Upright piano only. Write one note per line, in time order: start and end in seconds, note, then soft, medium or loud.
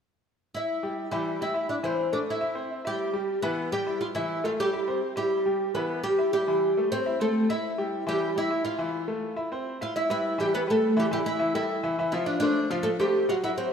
0.83 1.06 G3 medium
0.83 1.06 G4 medium
1.12 1.35 E3 medium
1.12 1.35 E4 medium
1.41 1.52 G3 medium
1.41 1.52 G4 medium
1.54 1.78 E4 medium
1.54 1.78 E5 medium
1.83 2.07 E3 medium
1.83 2.07 E4 medium
2.13 2.36 A3 medium
2.13 2.36 A4 medium
2.41 2.53 E4 medium
2.41 2.53 E5 medium
2.55 2.79 C4 medium
2.55 2.79 C5 medium
2.85 3.08 E4 medium
2.85 3.09 E5 medium
3.13 3.37 G3 medium
3.13 3.37 G4 medium
3.43 3.67 E3 medium
3.43 3.67 E4 medium
3.72 3.83 G3 medium
3.72 3.84 G4 medium
3.86 4.10 E4 medium
3.86 4.10 E5 medium
4.16 4.39 E3 medium
4.16 4.39 E4 medium
4.44 4.68 A3 medium
4.44 4.68 A4 medium
4.73 4.85 E4 medium
4.73 4.85 E5 medium
4.87 5.11 C4 medium
4.87 5.11 C5 medium
5.16 5.40 E4 medium
5.16 5.40 E5 medium
5.46 5.69 G3 medium
5.46 5.69 G4 medium
5.75 5.98 E3 medium
5.75 5.99 E4 medium
6.04 6.15 G3 medium
6.04 6.16 G4 medium
6.18 6.42 E4 medium
6.18 6.42 E5 medium
6.48 6.71 E3 medium
6.48 6.71 E4 medium
6.77 7.00 A3 medium
6.77 7.01 A4 medium
7.06 7.17 E4 medium
7.06 7.17 E5 medium
7.20 7.43 C4 medium
7.20 7.44 C5 medium
7.49 7.73 E4 medium
7.49 7.73 E5 medium
7.78 8.01 G3 medium
7.78 8.02 G4 medium
8.07 8.30 E3 medium
8.07 8.30 E4 medium
8.36 8.47 G3 medium
8.36 8.48 G4 medium
8.50 8.74 E4 medium
8.50 8.74 E5 medium
8.79 9.02 E3 medium
8.79 9.03 E4 medium
9.08 9.31 A3 medium
9.08 9.31 A4 medium
9.36 9.48 E4 medium
9.36 9.48 E5 medium
9.52 9.75 C4 medium
9.52 9.76 C5 medium
9.81 9.93 E4 medium
9.81 9.93 E5 medium
10.10 10.33 G3 medium
10.10 10.33 G4 medium
10.10 10.33 B4 medium
10.38 10.62 E3 medium
10.38 10.62 E4 medium
10.38 10.62 E5 medium
10.67 10.91 G3 medium
10.67 10.91 G4 medium
10.67 10.91 B4 medium
10.97 11.08 E3 medium
10.97 11.08 E4 medium
10.97 11.08 E5 medium
11.11 11.34 E3 medium
11.11 11.35 E4 medium
11.11 11.35 E5 medium
11.39 11.51 E3 medium
11.39 11.51 E4 medium
11.39 11.51 E5 medium
11.54 11.78 G3 medium
11.54 11.78 G4 medium
11.54 11.78 A4 medium
11.83 11.95 E3 medium
11.83 11.95 E4 medium
11.83 11.95 E5 medium
11.98 12.10 E3 medium
11.98 12.10 E4 medium
11.98 12.10 E5 medium
12.13 12.36 F3 medium
12.13 12.36 F4 medium
12.13 12.36 F5 medium
12.42 12.65 A3 medium
12.42 12.65 A4 medium
12.42 12.65 C5 medium
12.70 12.94 F3 medium
12.70 12.94 F4 medium
12.70 12.94 F5 medium
13.00 13.23 A3 medium
13.00 13.23 A4 medium
13.00 13.23 C5 medium
13.29 13.40 F#3 medium
13.29 13.40 F#4 medium
13.29 13.40 F#5 medium
13.43 13.66 F#3 medium
13.43 13.66 F#4 medium
13.43 13.67 F#5 medium